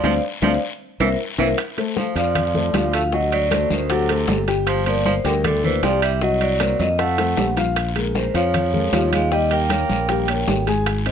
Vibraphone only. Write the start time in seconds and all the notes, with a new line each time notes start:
0.04 C5 D5 F5
0.43 C5 D5 F5
1.00 A#4 C5 E5
1.39 A#4 C5 E5
1.98 C5
2.17 D5
2.95 F5
3.13 D#5
3.32 D5
3.71 C5
3.91 A4
4.68 C5
4.87 D5
5.06 C5
5.25 A#4
5.45 A4
5.64 C5
5.84 D5
6.03 E5
6.21 D#5
6.41 D5
6.81 D#5
7.00 F#5
8.16 C5
8.27 C5
8.36 C#5
9.13 F5
9.32 D#5
9.51 G5